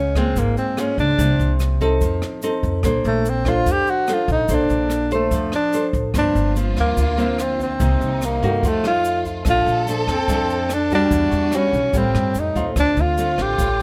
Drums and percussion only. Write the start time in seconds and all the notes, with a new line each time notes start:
0.15 kick, cross-stick, closed hi-hat, shaker
0.36 kick, closed hi-hat, shaker
0.57 closed hi-hat, shaker
0.77 cross-stick, closed hi-hat, shaker
0.98 kick, closed hi-hat, shaker
1.18 kick, closed hi-hat, shaker
1.39 closed hi-hat, shaker
1.60 cross-stick, closed hi-hat, shaker
1.80 kick, closed hi-hat, shaker
2.01 kick, closed hi-hat, shaker
2.22 cross-stick, closed hi-hat, shaker
2.42 closed hi-hat, shaker
2.63 kick, closed hi-hat, shaker
2.83 kick, cross-stick, closed hi-hat, shaker
3.04 closed hi-hat, shaker
3.25 closed hi-hat, shaker
3.45 kick, cross-stick, closed hi-hat, shaker
3.66 kick, closed hi-hat, shaker
3.87 closed hi-hat, shaker
4.08 cross-stick, closed hi-hat, shaker
4.28 kick, closed hi-hat, shaker
4.48 kick, closed hi-hat, shaker
4.69 closed hi-hat, shaker
4.90 cross-stick, closed hi-hat, shaker
5.11 closed hi-hat, shaker
5.31 kick, closed hi-hat, shaker
5.52 cross-stick, closed hi-hat, shaker
5.72 closed hi-hat, shaker
5.93 kick, closed hi-hat, shaker
6.14 kick, cross-stick, closed hi-hat, shaker
6.35 closed hi-hat, shaker
6.56 closed hi-hat, shaker
6.76 kick, cross-stick, closed hi-hat, shaker
6.97 kick, closed hi-hat, shaker
7.18 closed hi-hat, shaker
7.38 cross-stick, closed hi-hat, shaker
7.59 kick, closed hi-hat, shaker
7.80 kick, closed hi-hat, shaker
8.01 closed hi-hat, shaker
8.22 cross-stick, closed hi-hat, shaker
8.42 kick, closed hi-hat, shaker
8.63 kick, closed hi-hat, shaker
8.84 cross-stick, closed hi-hat, shaker
9.04 closed hi-hat, shaker
9.25 kick, closed hi-hat, shaker
9.45 kick, cross-stick, closed hi-hat, shaker
9.66 closed hi-hat, shaker
9.87 closed hi-hat, shaker
10.07 kick, cross-stick, closed hi-hat, shaker
10.28 kick, closed hi-hat, shaker
10.49 closed hi-hat, shaker
10.69 cross-stick, closed hi-hat, shaker
10.90 kick, closed hi-hat, shaker
11.11 kick, closed hi-hat, shaker
11.31 closed hi-hat, shaker
11.52 cross-stick, closed hi-hat, shaker
11.73 kick, closed hi-hat, shaker
11.93 kick, closed hi-hat, shaker
12.15 cross-stick, closed hi-hat, shaker
12.35 closed hi-hat, shaker
12.55 kick, closed hi-hat, shaker
12.76 kick, cross-stick, closed hi-hat, shaker
12.97 closed hi-hat, shaker
13.17 closed hi-hat, shaker
13.38 kick, cross-stick, closed hi-hat, shaker
13.58 kick, closed hi-hat, shaker